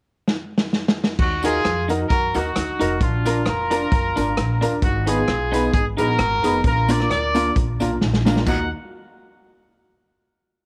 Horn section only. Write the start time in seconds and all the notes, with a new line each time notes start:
1.20 D#4 F#4
1.44 F4 G#4
2.09 F#4 A#4
2.36 D#4 F#4
3.02 D4 F4
3.48 F4 A#4
4.84 D#4 F#4
5.08 F4 G#4
5.74 D#4 G#4
5.99 F#4 A#4
6.66 F4 A#4
6.90 A#4 D5
7.11 A#4 D5
8.48 F#5